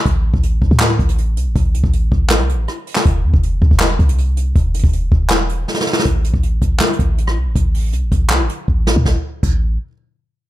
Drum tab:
CC |------------------------------------------------------------------------------------------------|------------------------------------------------------------------------------------------------|------------------------------------------------------------------------------------------------|------------------------------------------------------------------------------------------------|
HH |x-----------------------x-----------------------x-----------x-----x-----x-----------x-----------|x-----------x-----------x-----------------------x-----------x-----------x-----------o-----------|x-----------------------x-----------------------x-----------x-----x-----x-----------x-----------|x-----------x--x--x--x--x-----------------------x-----------x-----------------------------------|
CP |------------------------------------------------x-----------------------------------------------|------------------------------------------------x-----------------------------------------x-----|------------------------------------------------x-----------------------------------------------|------------------------------------------------x-----------------------------------------------|
SD |------------------------------------------------o-----------------------------------------------|------------------------------------------------o-----------------------r-----------------o-----|------------------------------------------------o-----------------------------------------------|------------------------------------------------o-----------------------o---o---o---o---o---o---|
BD |o-----------------o-----------------o-----o-----------------o-----------------------------------|o-----------------o-----------------o-----------------------------------------------------------|o-----------------o-----------------o-----o-----------------o-----------------------------------|o-----------------o-----------------o-----------------------------------------------------------|

CC |------------------------------------------------------------------------------------------------|------------------------------------------------------------------------------------------------|------------------------x-----------------------------------------------------------------------|
HH |x-----------x-----------x-----------x-----------x---x---x---x-----------x-----------------------|x-----------o-----------x-----------x-----------x-----------x-----------------------------------|------------------------------------------------------------------------------------------------|
CP |------------------------------------------------x-----------------------------------------------|------------------------------------------------x-----------------------------------------------|------------------------------------------------------------------------------------------------|
SD |------------------------------------------------o-----------------------------r-----------------|------------------------------------------------o-----------------------------------o-----------|o-----------------------------------------------------------------------------------------------|
BD |o-----------------o-----------------o-----------------------o-----------------------------------|o-----------------------------------o-----------------------------------o-----------------o-----|o-----------------------o-----------------------------------------------------------------------|